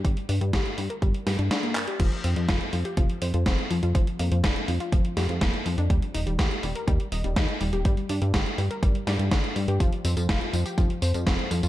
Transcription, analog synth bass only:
X:1
M:4/4
L:1/16
Q:1/4=123
K:Fmix
V:1 name="Analog synth bass" clef=bass
G,,, z G,, G,, G,,, z G,, z G,,, z G,, G,, z4 | F,,, z F,, F,, F,,, z F,, z F,,, z F,, F,, F,,, z F,, F,, | F,,, z F,, F,, F,,, z F,, z F,,, z F,, F,, F,,, z F,, F,, | E,, z E,,, E,,, E,, z E,,, z E,, z E,,, E,,, E,, z E,,, E,,, |
G,,, z G,, G,, G,,, z G,, z G,,, z G,, G,, G,,, z G,, G,, | F,,, z F,, F,, F,,, z F,, z F,,, z F,, F,, F,,, z F,, F,, |]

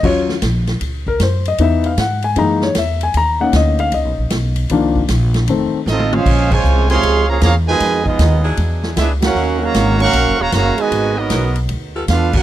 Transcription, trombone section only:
X:1
M:4/4
L:1/8
Q:"Swing" 1/4=154
K:Bbm
V:1 name="Trombone section" clef=bass
z8 | z8 | z8 | z6 [=A,CE] [_A,DF]- |
[A,DF] [D,F,A,]2 [C,F,A,]2 [D,F,B,] [D,F,B,] [_C,E,A,]- | [_C,E,A,] [A,_CE]2 z3 [^G,=B,=E] [_B,D^F]- | [B,D^F] [D,G,B,]2 [G,B,D]2 [D,G,B,] [D,G,B,] [_C,E,A,]- | [_C,E,A,] [G,_CE]2 z3 [=B,=DF] [_B,_DG] |]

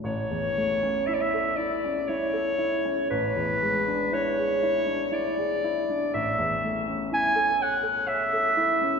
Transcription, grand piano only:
X:1
M:3/4
L:1/16
Q:1/4=60
K:A
V:1 name="Grand piano"
A,,, E,, A, C E A E C E A E C | A,,, E,, G, D E G E D E G E D | A,,, E,, A, C E A c A c A E C |]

